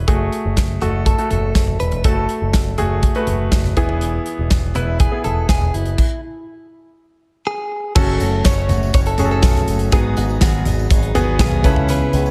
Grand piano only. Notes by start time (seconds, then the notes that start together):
Already playing: E4 G#4
0.07 A3 F#4 G#4
0.81 A3 F#4 A4
1.18 A3 F#4 A4
2.05 A3 F#4 A4
2.78 A3 F#4 G#4
3.15 A3 F#4 B4
3.77 E3 B3 E4 G#4
4.75 B3 E4 B4
5.12 B3 E4 G#4
7.96 C#4 F#4 A4
9.19 C#4 F#4 G#4
9.25 A4
9.92 G#2 B3 F#4 G#4
11.15 B3 F#4 G#4
11.64 C#3 C#4 E4 B4